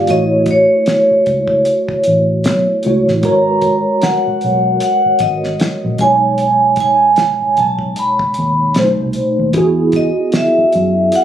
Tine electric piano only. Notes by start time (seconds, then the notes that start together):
0.06 A3 E4 F#4
0.11 C#5
2.85 A3 E4 F#4 C#5
3.22 G#3 F#4 A#4 B4
3.26 C#5
5.99 B2 G#3 D#4
6.03 C#5
8.76 B2 A3 C4 C5
8.84 D#4
9.54 B3 E4 F#4
9.58 G#4